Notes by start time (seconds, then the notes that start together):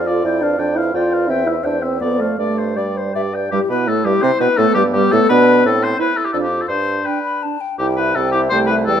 Already playing: F2 D5
0.07 F4 A4 D5
0.24 F2 E4 D5 G5
0.41 D4 B4 F5
0.58 F2 D4 D5 G5
0.76 E4 B4 F5
0.94 F2 F4 D5 G5
1.12 B4 F5
1.28 E2 C4 E5 G5
1.46 E4 C5 E5
1.64 E2 D4 C5 E5 G5
1.82 C4 C5 E5
2.00 F2 B3 A4 D5
2.19 A3 C5 F5
2.38 G2 A3 D5
2.56 C5
2.76 G2 G3 D5
2.95 C5
3.14 G2 G4 D5 E5
3.33 B4 D5 G5
3.51 G2 G3 E4 G4
3.69 B2 B3 B4
3.88 A2 A3 A4
4.05 G2 G3 G4
4.22 C3 C4 C5
4.40 B2 B3 B4
4.57 A2 A3 B3 A4
4.74 G2 G3 G4
4.93 G2 G3 G4
5.12 A2 A3 A4
5.29 B2 B3 D4 B4
5.65 A2 C4 A4
5.83 C5
5.99 E4 B4 C5
6.17 A4
6.25 G4
6.33 F2 D4 F4 A4 D5
6.42 G4
6.61 A4
6.68 G2 D4 C5
7.05 D4 B4 G5
7.23 B5
7.43 D4 A5
7.61 G5
7.78 C2 E4 G4 G5
7.96 E4 B4 E5
8.15 C2 C4 G4 A4 G5
8.31 E4 G4 E5
8.49 C2 A3 G4 C5 G5
8.66 E4 B4
8.71 E5
8.86 E2 G3 G4 A4 G5